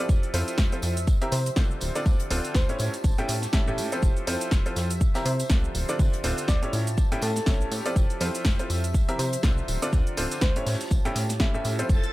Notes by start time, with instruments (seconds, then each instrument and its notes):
Already playing: ambient pad G4 E5 A5
0.00 upright piano F3 C4 E4 F4 A4 D5
0.09 analog synth bass F1, kick, tambourine, shaker
0.23 closed hi-hat, shaker
0.34 analog synth bass F2, upright piano F3 C4 E4 F4 A4 C5, snare, open hi-hat, tambourine
0.48 ambient pad C5, closed hi-hat, tambourine, shaker
0.58 analog synth bass F1, kick, snare, tambourine, shaker
0.72 upright piano F3 C4 E4 F4 A4 C5, closed hi-hat, shaker
0.82 analog synth bass F2, open hi-hat, tambourine
0.97 closed hi-hat, tambourine, shaker
1.07 analog synth bass C2, ambient pad G4, kick, tambourine, shaker
1.22 upright piano C3 C4 E4 G4 A#4 E5, closed hi-hat, shaker
1.32 analog synth bass C3, soft synth lead C5, snare, open hi-hat, tambourine
1.46 closed hi-hat, tambourine, shaker
1.56 analog synth bass C2, upright piano D3 C4 D4 F4 A4 C5, kick, snare, tambourine, shaker
1.71 shaker
1.81 analog synth bass D1, open hi-hat, tambourine
1.95 upright piano D3 C4 D4 F4 A4 D5, snare, closed hi-hat, tambourine, shaker
2.06 analog synth bass D2, kick, tambourine, shaker
2.20 closed hi-hat, shaker
2.26 ambient pad A5
2.30 analog synth bass D1, upright piano D3 C4 D4 F4 A4 C5, open hi-hat, tambourine
2.44 closed hi-hat, tambourine, shaker
2.55 analog synth bass D2, soft synth lead C5, kick, snare, tambourine, shaker
2.56 snare
2.69 upright piano A2 C#4 E4 G4 A4 C#5, closed hi-hat, shaker
2.79 analog synth bass A2, ambient pad G4, open hi-hat, tambourine
2.93 closed hi-hat, tambourine, shaker
2.98 ambient pad C#5
3.04 analog synth bass A1, kick, tambourine, shaker
3.18 upright piano A2 C#4 E4 G4 A4 G5, closed hi-hat, shaker
3.28 analog synth bass A2, open hi-hat, tambourine
3.36 ambient pad E5
3.42 snare, closed hi-hat, tambourine, shaker
3.53 analog synth bass A1, upright piano A2 C#4 E4 G4 A4 E5, kick, snare, tambourine, shaker
3.55 snare
3.68 upright piano A2 C#4 E4 G4 A4 E5, shaker
3.78 analog synth bass A2, open hi-hat, tambourine
3.92 upright piano F3 C4 E4 F4 A4 C5, closed hi-hat, tambourine, shaker
4.03 analog synth bass F1, kick, tambourine, shaker
4.17 closed hi-hat, shaker
4.27 analog synth bass F2, upright piano F3 C4 E4 F4 A4 C5, snare, open hi-hat, tambourine
4.41 closed hi-hat, tambourine, shaker
4.48 ambient pad C5, snare, tambourine
4.52 analog synth bass F1, kick, shaker
4.66 upright piano F3 C4 E4 F4 A4 C5, closed hi-hat, shaker
4.76 analog synth bass F2, snare, open hi-hat, tambourine
4.90 closed hi-hat, tambourine, shaker
5.01 analog synth bass C2, ambient pad G4, kick, tambourine, shaker
5.14 upright piano C3 C4 E4 G4 A#4 E5, snare, closed hi-hat, tambourine, shaker
5.25 analog synth bass C3, soft synth lead C5, open hi-hat, tambourine
5.39 closed hi-hat, tambourine, shaker
5.50 analog synth bass C2, upright piano D3 C4 D4 F4 A4 C5, kick, snare, tambourine, shaker
5.64 shaker
5.75 analog synth bass D1, open hi-hat, tambourine
5.88 upright piano D3 C4 D4 F4 A4 D5, snare, closed hi-hat, tambourine, shaker
5.99 analog synth bass D2, kick, tambourine, shaker
6.13 closed hi-hat, shaker
6.20 analog synth bass D1, ambient pad A5, tambourine
6.24 upright piano D3 C4 D4 F4 A4 C5, open hi-hat
6.37 closed hi-hat, tambourine, shaker
6.48 analog synth bass D2, soft synth lead D5, kick, snare, tambourine, shaker
6.63 upright piano A2 C#4 E4 G4 A4 C#5, closed hi-hat, shaker
6.73 analog synth bass A2, ambient pad G4, open hi-hat, tambourine
6.87 closed hi-hat, tambourine, shaker
6.96 analog synth bass A1, ambient pad C#5, kick, tambourine, shaker
7.12 upright piano A2 C#4 E4 G4 A4 G5, closed hi-hat, shaker
7.22 analog synth bass A2, soft synth lead A4, open hi-hat, tambourine
7.30 ambient pad E5
7.36 snare, closed hi-hat, tambourine, shaker
7.46 analog synth bass A1, upright piano A2 C#4 E4 G4 A4 C#5, kick, snare, tambourine, shaker
7.61 shaker
7.71 analog synth bass A2, open hi-hat, tambourine
7.85 upright piano F3 C4 E4 F4 A4 D5, closed hi-hat, tambourine, shaker
7.96 analog synth bass F1, kick, tambourine, shaker
8.10 closed hi-hat, shaker
8.20 analog synth bass F2, upright piano F3 C4 E4 F4 A4 C5, snare, open hi-hat, tambourine
8.35 closed hi-hat, tambourine, shaker
8.41 ambient pad C5, snare
8.45 analog synth bass F1, kick, tambourine, shaker
8.59 upright piano F3 C4 E4 F4 A4 C5, closed hi-hat, shaker
8.70 analog synth bass F2, open hi-hat, tambourine
8.84 closed hi-hat, tambourine, shaker
8.94 analog synth bass C2, ambient pad G4, kick, tambourine, shaker
9.09 upright piano C3 C4 E4 G4 A#4 E5, closed hi-hat, shaker
9.18 analog synth bass C3, soft synth lead C5, snare, open hi-hat, tambourine
9.33 closed hi-hat, tambourine, shaker
9.43 analog synth bass C2, upright piano D3 C4 D4 F4 A4 C5, kick, snare, tambourine, shaker
9.58 shaker
9.68 analog synth bass D1, open hi-hat, tambourine
9.82 upright piano D3 C4 D4 F4 A4 D5, closed hi-hat, tambourine, shaker
9.92 analog synth bass D2, kick, snare, tambourine, shaker
10.07 closed hi-hat, shaker
10.13 analog synth bass D1, upright piano D3 C4 D4 F4 A4 C5, ambient pad A5, open hi-hat, tambourine
10.32 closed hi-hat, tambourine, shaker
10.41 analog synth bass D2, soft synth lead C5, kick, snare, tambourine, shaker
10.56 upright piano A2 C#4 E4 G4 A4 C#5, closed hi-hat, shaker
10.66 analog synth bass A2, ambient pad G4, snare, open hi-hat, tambourine
10.74 ambient pad C#5, snare, tambourine
10.80 snare, closed hi-hat, tambourine, shaker
10.85 snare, tambourine
10.91 analog synth bass A1, ambient pad E5, kick, tambourine, shaker
11.05 upright piano A2 C#4 E4 G4 A4 G5, closed hi-hat, shaker
11.15 analog synth bass A2, open hi-hat, tambourine
11.29 snare, closed hi-hat, tambourine, shaker
11.40 analog synth bass A1, upright piano A2 C#4 E4 G4 A4 E5, kick, snare, tambourine, shaker
11.54 upright piano A2 C#4 E4 G4 A4 E5, shaker
11.64 analog synth bass A2, open hi-hat, tambourine
11.79 upright piano F3 C4 E4 F4 A4 C5, closed hi-hat, tambourine, shaker
11.89 analog synth bass F1, string machine A4 A5, kick, tambourine, shaker
12.03 ambient pad C5, closed hi-hat, shaker